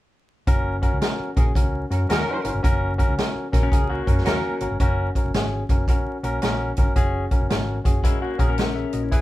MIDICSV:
0, 0, Header, 1, 7, 480
1, 0, Start_track
1, 0, Tempo, 540541
1, 423, Time_signature, 4, 2, 24, 8
1, 8181, End_track
2, 0, Start_track
2, 0, Title_t, "Tine electric piano"
2, 0, Program_c, 0, 4
2, 418, Note_on_c, 0, 61, 110
2, 419, Note_on_c, 0, 66, 91
2, 426, Note_on_c, 0, 70, 127
2, 671, Note_off_c, 0, 61, 0
2, 671, Note_off_c, 0, 66, 0
2, 675, Note_off_c, 0, 70, 0
2, 726, Note_on_c, 0, 61, 91
2, 734, Note_on_c, 0, 66, 91
2, 739, Note_on_c, 0, 70, 98
2, 865, Note_off_c, 0, 61, 0
2, 869, Note_off_c, 0, 66, 0
2, 871, Note_off_c, 0, 70, 0
2, 897, Note_on_c, 0, 61, 67
2, 901, Note_on_c, 0, 66, 72
2, 907, Note_on_c, 0, 70, 83
2, 1150, Note_off_c, 0, 61, 0
2, 1153, Note_off_c, 0, 66, 0
2, 1155, Note_off_c, 0, 70, 0
2, 1209, Note_on_c, 0, 61, 72
2, 1216, Note_on_c, 0, 66, 74
2, 1221, Note_on_c, 0, 68, 93
2, 1346, Note_off_c, 0, 61, 0
2, 1350, Note_off_c, 0, 66, 0
2, 1352, Note_off_c, 0, 68, 0
2, 1378, Note_on_c, 0, 61, 75
2, 1382, Note_on_c, 0, 66, 67
2, 1390, Note_on_c, 0, 70, 86
2, 1631, Note_off_c, 0, 61, 0
2, 1633, Note_off_c, 0, 66, 0
2, 1637, Note_off_c, 0, 70, 0
2, 1690, Note_on_c, 0, 61, 73
2, 1696, Note_on_c, 0, 66, 78
2, 1703, Note_on_c, 0, 70, 79
2, 1827, Note_off_c, 0, 61, 0
2, 1830, Note_off_c, 0, 66, 0
2, 1833, Note_off_c, 0, 70, 0
2, 1856, Note_on_c, 0, 61, 104
2, 1861, Note_on_c, 0, 66, 99
2, 1866, Note_on_c, 0, 70, 121
2, 2110, Note_off_c, 0, 61, 0
2, 2113, Note_off_c, 0, 66, 0
2, 2115, Note_off_c, 0, 70, 0
2, 2166, Note_on_c, 0, 61, 90
2, 2173, Note_on_c, 0, 66, 78
2, 2174, Note_on_c, 0, 70, 98
2, 2305, Note_off_c, 0, 61, 0
2, 2308, Note_off_c, 0, 66, 0
2, 2309, Note_off_c, 0, 70, 0
2, 2334, Note_on_c, 0, 61, 104
2, 2339, Note_on_c, 0, 66, 93
2, 2346, Note_on_c, 0, 70, 116
2, 2589, Note_off_c, 0, 61, 0
2, 2592, Note_off_c, 0, 66, 0
2, 2595, Note_off_c, 0, 70, 0
2, 2647, Note_on_c, 0, 61, 105
2, 2648, Note_on_c, 0, 66, 95
2, 2657, Note_on_c, 0, 70, 111
2, 2785, Note_off_c, 0, 61, 0
2, 2786, Note_off_c, 0, 66, 0
2, 2790, Note_off_c, 0, 70, 0
2, 2819, Note_on_c, 0, 61, 65
2, 2826, Note_on_c, 0, 66, 71
2, 2832, Note_on_c, 0, 70, 76
2, 3072, Note_off_c, 0, 61, 0
2, 3075, Note_off_c, 0, 66, 0
2, 3078, Note_off_c, 0, 70, 0
2, 3129, Note_on_c, 0, 61, 81
2, 3134, Note_on_c, 0, 66, 75
2, 3136, Note_on_c, 0, 70, 88
2, 3266, Note_off_c, 0, 61, 0
2, 3269, Note_off_c, 0, 66, 0
2, 3270, Note_off_c, 0, 70, 0
2, 3300, Note_on_c, 0, 61, 74
2, 3307, Note_on_c, 0, 66, 68
2, 3309, Note_on_c, 0, 70, 93
2, 3552, Note_off_c, 0, 61, 0
2, 3555, Note_off_c, 0, 66, 0
2, 3557, Note_off_c, 0, 70, 0
2, 3610, Note_on_c, 0, 61, 76
2, 3617, Note_on_c, 0, 66, 73
2, 3621, Note_on_c, 0, 70, 85
2, 3747, Note_off_c, 0, 61, 0
2, 3750, Note_off_c, 0, 66, 0
2, 3753, Note_off_c, 0, 70, 0
2, 3775, Note_on_c, 0, 61, 105
2, 3782, Note_on_c, 0, 66, 90
2, 3787, Note_on_c, 0, 70, 121
2, 4030, Note_off_c, 0, 61, 0
2, 4033, Note_off_c, 0, 66, 0
2, 4036, Note_off_c, 0, 70, 0
2, 4094, Note_on_c, 0, 61, 84
2, 4100, Note_on_c, 0, 66, 82
2, 4106, Note_on_c, 0, 70, 96
2, 4229, Note_off_c, 0, 61, 0
2, 4232, Note_off_c, 0, 66, 0
2, 4235, Note_off_c, 0, 70, 0
2, 4262, Note_on_c, 0, 61, 107
2, 4270, Note_on_c, 0, 66, 102
2, 4272, Note_on_c, 0, 70, 105
2, 4513, Note_off_c, 0, 61, 0
2, 4517, Note_off_c, 0, 66, 0
2, 4518, Note_off_c, 0, 70, 0
2, 4582, Note_on_c, 0, 61, 77
2, 4586, Note_on_c, 0, 66, 72
2, 4595, Note_on_c, 0, 70, 80
2, 4713, Note_off_c, 0, 61, 0
2, 4715, Note_off_c, 0, 66, 0
2, 4719, Note_off_c, 0, 70, 0
2, 4746, Note_on_c, 0, 61, 73
2, 4748, Note_on_c, 0, 66, 54
2, 4754, Note_on_c, 0, 68, 73
2, 4995, Note_off_c, 0, 61, 0
2, 4996, Note_off_c, 0, 66, 0
2, 4999, Note_off_c, 0, 68, 0
2, 5061, Note_on_c, 0, 61, 78
2, 5065, Note_on_c, 0, 66, 70
2, 5070, Note_on_c, 0, 70, 82
2, 5192, Note_off_c, 0, 61, 0
2, 5194, Note_off_c, 0, 66, 0
2, 5197, Note_off_c, 0, 70, 0
2, 5224, Note_on_c, 0, 61, 76
2, 5232, Note_on_c, 0, 66, 76
2, 5236, Note_on_c, 0, 70, 79
2, 5474, Note_off_c, 0, 61, 0
2, 5478, Note_off_c, 0, 66, 0
2, 5480, Note_off_c, 0, 70, 0
2, 5536, Note_on_c, 0, 61, 95
2, 5540, Note_on_c, 0, 66, 83
2, 5545, Note_on_c, 0, 70, 111
2, 5670, Note_off_c, 0, 61, 0
2, 5672, Note_off_c, 0, 66, 0
2, 5674, Note_off_c, 0, 70, 0
2, 5699, Note_on_c, 0, 61, 93
2, 5704, Note_on_c, 0, 66, 88
2, 5710, Note_on_c, 0, 70, 98
2, 5951, Note_off_c, 0, 61, 0
2, 5954, Note_off_c, 0, 66, 0
2, 5957, Note_off_c, 0, 70, 0
2, 6018, Note_on_c, 0, 61, 88
2, 6023, Note_on_c, 0, 66, 73
2, 6031, Note_on_c, 0, 70, 99
2, 6151, Note_off_c, 0, 61, 0
2, 6153, Note_off_c, 0, 66, 0
2, 6157, Note_off_c, 0, 70, 0
2, 6177, Note_on_c, 0, 61, 98
2, 6186, Note_on_c, 0, 66, 95
2, 6187, Note_on_c, 0, 68, 122
2, 6430, Note_off_c, 0, 61, 0
2, 6434, Note_off_c, 0, 66, 0
2, 6435, Note_off_c, 0, 68, 0
2, 6491, Note_on_c, 0, 61, 81
2, 6497, Note_on_c, 0, 66, 74
2, 6500, Note_on_c, 0, 70, 81
2, 6627, Note_off_c, 0, 61, 0
2, 6630, Note_off_c, 0, 66, 0
2, 6631, Note_off_c, 0, 70, 0
2, 6654, Note_on_c, 0, 61, 70
2, 6658, Note_on_c, 0, 66, 71
2, 6662, Note_on_c, 0, 70, 73
2, 6908, Note_off_c, 0, 61, 0
2, 6911, Note_off_c, 0, 66, 0
2, 6913, Note_off_c, 0, 70, 0
2, 6964, Note_on_c, 0, 61, 73
2, 6969, Note_on_c, 0, 66, 76
2, 6977, Note_on_c, 0, 68, 86
2, 7103, Note_off_c, 0, 61, 0
2, 7106, Note_off_c, 0, 66, 0
2, 7109, Note_off_c, 0, 68, 0
2, 7137, Note_on_c, 0, 66, 66
2, 7138, Note_on_c, 0, 61, 68
2, 7144, Note_on_c, 0, 70, 75
2, 7390, Note_off_c, 0, 61, 0
2, 7390, Note_off_c, 0, 66, 0
2, 7393, Note_off_c, 0, 70, 0
2, 7443, Note_on_c, 0, 61, 97
2, 7453, Note_on_c, 0, 66, 87
2, 7458, Note_on_c, 0, 70, 111
2, 7583, Note_off_c, 0, 61, 0
2, 7587, Note_off_c, 0, 66, 0
2, 7590, Note_off_c, 0, 70, 0
2, 7622, Note_on_c, 0, 78, 62
2, 7771, Note_off_c, 0, 78, 0
2, 7774, Note_on_c, 0, 76, 74
2, 7776, Note_on_c, 0, 68, 54
2, 7924, Note_off_c, 0, 76, 0
2, 7926, Note_off_c, 0, 68, 0
2, 7932, Note_on_c, 0, 75, 68
2, 7936, Note_on_c, 0, 66, 58
2, 8012, Note_off_c, 0, 75, 0
2, 8015, Note_off_c, 0, 66, 0
2, 8020, Note_on_c, 0, 73, 56
2, 8024, Note_on_c, 0, 64, 48
2, 8083, Note_off_c, 0, 64, 0
2, 8094, Note_on_c, 0, 64, 114
2, 8100, Note_on_c, 0, 68, 97
2, 8105, Note_on_c, 0, 71, 115
2, 8181, Note_off_c, 0, 64, 0
2, 8181, Note_off_c, 0, 68, 0
2, 8181, Note_off_c, 0, 71, 0
2, 8181, Note_off_c, 0, 73, 0
2, 8181, End_track
3, 0, Start_track
3, 0, Title_t, "Clean electric guitar"
3, 0, Program_c, 1, 27
3, 3223, Note_on_c, 1, 61, 70
3, 3224, Note_on_c, 1, 70, 70
3, 3297, Note_off_c, 1, 70, 0
3, 3301, Note_on_c, 1, 68, 75
3, 3302, Note_off_c, 1, 61, 0
3, 3451, Note_off_c, 1, 68, 0
3, 3458, Note_on_c, 1, 66, 79
3, 3463, Note_on_c, 1, 58, 64
3, 4144, Note_off_c, 1, 66, 0
3, 4146, Note_off_c, 1, 58, 0
3, 7139, Note_on_c, 1, 64, 69
3, 7143, Note_on_c, 1, 56, 57
3, 7289, Note_off_c, 1, 64, 0
3, 7291, Note_off_c, 1, 56, 0
3, 7299, Note_on_c, 1, 58, 66
3, 7299, Note_on_c, 1, 66, 70
3, 7446, Note_off_c, 1, 66, 0
3, 7448, Note_off_c, 1, 58, 0
3, 7451, Note_on_c, 1, 68, 70
3, 7532, Note_off_c, 1, 68, 0
3, 7537, Note_on_c, 1, 70, 75
3, 7543, Note_on_c, 1, 61, 62
3, 8073, Note_off_c, 1, 70, 0
3, 8075, Note_off_c, 1, 61, 0
3, 8181, End_track
4, 0, Start_track
4, 0, Title_t, "Horn section"
4, 0, Program_c, 2, 61
4, 1214, Note_on_c, 2, 70, 83
4, 1215, Note_on_c, 2, 54, 77
4, 1216, Note_on_c, 2, 61, 69
4, 1286, Note_off_c, 2, 70, 0
4, 1287, Note_off_c, 2, 54, 0
4, 1287, Note_off_c, 2, 61, 0
4, 1698, Note_on_c, 2, 61, 74
4, 1698, Note_on_c, 2, 70, 83
4, 1699, Note_on_c, 2, 54, 68
4, 1768, Note_off_c, 2, 61, 0
4, 1768, Note_off_c, 2, 70, 0
4, 1769, Note_off_c, 2, 54, 0
4, 1867, Note_on_c, 2, 54, 96
4, 1867, Note_on_c, 2, 70, 104
4, 1868, Note_on_c, 2, 61, 96
4, 2242, Note_off_c, 2, 54, 0
4, 2242, Note_off_c, 2, 70, 0
4, 2243, Note_off_c, 2, 61, 0
4, 3138, Note_on_c, 2, 61, 80
4, 3139, Note_on_c, 2, 54, 84
4, 3139, Note_on_c, 2, 70, 88
4, 3208, Note_off_c, 2, 61, 0
4, 3209, Note_off_c, 2, 54, 0
4, 3209, Note_off_c, 2, 70, 0
4, 3610, Note_on_c, 2, 70, 83
4, 3611, Note_on_c, 2, 61, 70
4, 3613, Note_on_c, 2, 54, 67
4, 3684, Note_off_c, 2, 61, 0
4, 3684, Note_off_c, 2, 70, 0
4, 3686, Note_off_c, 2, 54, 0
4, 3774, Note_on_c, 2, 70, 97
4, 3777, Note_on_c, 2, 54, 88
4, 3777, Note_on_c, 2, 61, 95
4, 4155, Note_off_c, 2, 70, 0
4, 4157, Note_off_c, 2, 54, 0
4, 4157, Note_off_c, 2, 61, 0
4, 8181, End_track
5, 0, Start_track
5, 0, Title_t, "Fingered electric bass"
5, 0, Program_c, 3, 33
5, 420, Note_on_c, 3, 30, 87
5, 743, Note_off_c, 3, 30, 0
5, 821, Note_on_c, 3, 37, 81
5, 888, Note_off_c, 3, 37, 0
5, 1216, Note_on_c, 3, 34, 79
5, 1351, Note_off_c, 3, 34, 0
5, 1379, Note_on_c, 3, 37, 79
5, 1634, Note_off_c, 3, 37, 0
5, 1691, Note_on_c, 3, 42, 96
5, 1828, Note_off_c, 3, 42, 0
5, 1858, Note_on_c, 3, 39, 87
5, 1987, Note_off_c, 3, 39, 0
5, 2172, Note_on_c, 3, 32, 69
5, 2241, Note_off_c, 3, 32, 0
5, 2255, Note_on_c, 3, 31, 82
5, 2325, Note_off_c, 3, 31, 0
5, 2345, Note_on_c, 3, 30, 103
5, 2666, Note_off_c, 3, 30, 0
5, 2740, Note_on_c, 3, 37, 82
5, 2808, Note_off_c, 3, 37, 0
5, 3137, Note_on_c, 3, 34, 83
5, 3272, Note_off_c, 3, 34, 0
5, 3303, Note_on_c, 3, 37, 75
5, 3557, Note_off_c, 3, 37, 0
5, 3617, Note_on_c, 3, 42, 89
5, 3752, Note_off_c, 3, 42, 0
5, 3778, Note_on_c, 3, 39, 81
5, 3907, Note_off_c, 3, 39, 0
5, 4092, Note_on_c, 3, 32, 78
5, 4162, Note_off_c, 3, 32, 0
5, 4178, Note_on_c, 3, 31, 70
5, 4247, Note_off_c, 3, 31, 0
5, 4263, Note_on_c, 3, 30, 98
5, 4517, Note_off_c, 3, 30, 0
5, 4657, Note_on_c, 3, 30, 85
5, 4726, Note_off_c, 3, 30, 0
5, 4743, Note_on_c, 3, 32, 77
5, 4997, Note_off_c, 3, 32, 0
5, 5055, Note_on_c, 3, 30, 81
5, 5191, Note_off_c, 3, 30, 0
5, 5533, Note_on_c, 3, 34, 91
5, 5670, Note_off_c, 3, 34, 0
5, 5705, Note_on_c, 3, 34, 85
5, 5958, Note_off_c, 3, 34, 0
5, 6020, Note_on_c, 3, 31, 78
5, 6154, Note_off_c, 3, 31, 0
5, 6181, Note_on_c, 3, 30, 93
5, 6435, Note_off_c, 3, 30, 0
5, 6582, Note_on_c, 3, 30, 91
5, 6648, Note_off_c, 3, 30, 0
5, 6667, Note_on_c, 3, 32, 81
5, 6919, Note_off_c, 3, 32, 0
5, 6972, Note_on_c, 3, 30, 76
5, 7108, Note_off_c, 3, 30, 0
5, 7452, Note_on_c, 3, 34, 83
5, 7842, Note_off_c, 3, 34, 0
5, 7934, Note_on_c, 3, 34, 73
5, 8070, Note_off_c, 3, 34, 0
5, 8098, Note_on_c, 3, 28, 93
5, 8181, Note_off_c, 3, 28, 0
5, 8181, End_track
6, 0, Start_track
6, 0, Title_t, "Muted fingered electric bass strokes"
6, 1060, Note_on_c, 9, 29, 47
6, 1149, Note_off_c, 9, 29, 0
6, 2977, Note_on_c, 9, 29, 50
6, 3066, Note_off_c, 9, 29, 0
6, 5378, Note_on_c, 9, 29, 41
6, 5467, Note_off_c, 9, 29, 0
6, 7300, Note_on_c, 9, 29, 41
6, 7388, Note_off_c, 9, 29, 0
6, 8181, End_track
7, 0, Start_track
7, 0, Title_t, "Drums"
7, 419, Note_on_c, 9, 36, 103
7, 419, Note_on_c, 9, 42, 78
7, 508, Note_off_c, 9, 36, 0
7, 508, Note_off_c, 9, 42, 0
7, 734, Note_on_c, 9, 36, 77
7, 734, Note_on_c, 9, 42, 57
7, 823, Note_off_c, 9, 36, 0
7, 823, Note_off_c, 9, 42, 0
7, 902, Note_on_c, 9, 42, 71
7, 903, Note_on_c, 9, 38, 96
7, 991, Note_off_c, 9, 42, 0
7, 992, Note_off_c, 9, 38, 0
7, 1214, Note_on_c, 9, 36, 98
7, 1216, Note_on_c, 9, 42, 78
7, 1303, Note_off_c, 9, 36, 0
7, 1304, Note_off_c, 9, 42, 0
7, 1380, Note_on_c, 9, 36, 91
7, 1386, Note_on_c, 9, 42, 89
7, 1469, Note_off_c, 9, 36, 0
7, 1475, Note_off_c, 9, 42, 0
7, 1700, Note_on_c, 9, 42, 70
7, 1788, Note_off_c, 9, 42, 0
7, 1862, Note_on_c, 9, 42, 84
7, 1872, Note_on_c, 9, 38, 102
7, 1950, Note_off_c, 9, 42, 0
7, 1961, Note_off_c, 9, 38, 0
7, 2172, Note_on_c, 9, 42, 71
7, 2260, Note_off_c, 9, 42, 0
7, 2344, Note_on_c, 9, 36, 96
7, 2348, Note_on_c, 9, 42, 77
7, 2433, Note_off_c, 9, 36, 0
7, 2436, Note_off_c, 9, 42, 0
7, 2658, Note_on_c, 9, 36, 79
7, 2660, Note_on_c, 9, 42, 60
7, 2747, Note_off_c, 9, 36, 0
7, 2749, Note_off_c, 9, 42, 0
7, 2828, Note_on_c, 9, 42, 75
7, 2830, Note_on_c, 9, 38, 91
7, 2917, Note_off_c, 9, 42, 0
7, 2918, Note_off_c, 9, 38, 0
7, 3137, Note_on_c, 9, 36, 89
7, 3140, Note_on_c, 9, 38, 31
7, 3143, Note_on_c, 9, 42, 84
7, 3225, Note_off_c, 9, 36, 0
7, 3229, Note_off_c, 9, 38, 0
7, 3231, Note_off_c, 9, 42, 0
7, 3301, Note_on_c, 9, 36, 90
7, 3310, Note_on_c, 9, 42, 85
7, 3390, Note_off_c, 9, 36, 0
7, 3399, Note_off_c, 9, 42, 0
7, 3616, Note_on_c, 9, 36, 83
7, 3622, Note_on_c, 9, 42, 62
7, 3705, Note_off_c, 9, 36, 0
7, 3709, Note_on_c, 9, 38, 36
7, 3710, Note_off_c, 9, 42, 0
7, 3779, Note_on_c, 9, 42, 74
7, 3790, Note_off_c, 9, 38, 0
7, 3790, Note_on_c, 9, 38, 100
7, 3868, Note_off_c, 9, 42, 0
7, 3878, Note_off_c, 9, 38, 0
7, 4090, Note_on_c, 9, 42, 66
7, 4178, Note_off_c, 9, 42, 0
7, 4262, Note_on_c, 9, 36, 84
7, 4262, Note_on_c, 9, 42, 81
7, 4350, Note_off_c, 9, 36, 0
7, 4351, Note_off_c, 9, 42, 0
7, 4576, Note_on_c, 9, 36, 68
7, 4580, Note_on_c, 9, 42, 57
7, 4665, Note_off_c, 9, 36, 0
7, 4668, Note_off_c, 9, 42, 0
7, 4744, Note_on_c, 9, 42, 70
7, 4745, Note_on_c, 9, 38, 100
7, 4833, Note_off_c, 9, 42, 0
7, 4834, Note_off_c, 9, 38, 0
7, 5054, Note_on_c, 9, 36, 82
7, 5056, Note_on_c, 9, 42, 73
7, 5143, Note_off_c, 9, 36, 0
7, 5145, Note_off_c, 9, 42, 0
7, 5219, Note_on_c, 9, 36, 84
7, 5224, Note_on_c, 9, 42, 81
7, 5308, Note_off_c, 9, 36, 0
7, 5313, Note_off_c, 9, 42, 0
7, 5539, Note_on_c, 9, 42, 68
7, 5628, Note_off_c, 9, 42, 0
7, 5700, Note_on_c, 9, 42, 74
7, 5710, Note_on_c, 9, 38, 94
7, 5788, Note_off_c, 9, 42, 0
7, 5799, Note_off_c, 9, 38, 0
7, 6009, Note_on_c, 9, 42, 63
7, 6020, Note_on_c, 9, 36, 90
7, 6097, Note_off_c, 9, 42, 0
7, 6109, Note_off_c, 9, 36, 0
7, 6180, Note_on_c, 9, 42, 75
7, 6181, Note_on_c, 9, 36, 86
7, 6269, Note_off_c, 9, 36, 0
7, 6269, Note_off_c, 9, 42, 0
7, 6493, Note_on_c, 9, 42, 53
7, 6494, Note_on_c, 9, 36, 82
7, 6582, Note_off_c, 9, 36, 0
7, 6582, Note_off_c, 9, 42, 0
7, 6663, Note_on_c, 9, 42, 76
7, 6664, Note_on_c, 9, 38, 100
7, 6751, Note_off_c, 9, 42, 0
7, 6753, Note_off_c, 9, 38, 0
7, 6973, Note_on_c, 9, 36, 88
7, 6975, Note_on_c, 9, 42, 73
7, 7061, Note_off_c, 9, 36, 0
7, 7064, Note_off_c, 9, 42, 0
7, 7137, Note_on_c, 9, 36, 81
7, 7143, Note_on_c, 9, 42, 86
7, 7225, Note_off_c, 9, 36, 0
7, 7232, Note_off_c, 9, 42, 0
7, 7452, Note_on_c, 9, 36, 79
7, 7454, Note_on_c, 9, 42, 70
7, 7541, Note_off_c, 9, 36, 0
7, 7542, Note_off_c, 9, 42, 0
7, 7617, Note_on_c, 9, 42, 78
7, 7628, Note_on_c, 9, 38, 104
7, 7706, Note_off_c, 9, 42, 0
7, 7717, Note_off_c, 9, 38, 0
7, 7926, Note_on_c, 9, 42, 65
7, 8015, Note_off_c, 9, 42, 0
7, 8098, Note_on_c, 9, 36, 81
7, 8098, Note_on_c, 9, 42, 81
7, 8181, Note_off_c, 9, 36, 0
7, 8181, Note_off_c, 9, 42, 0
7, 8181, End_track
0, 0, End_of_file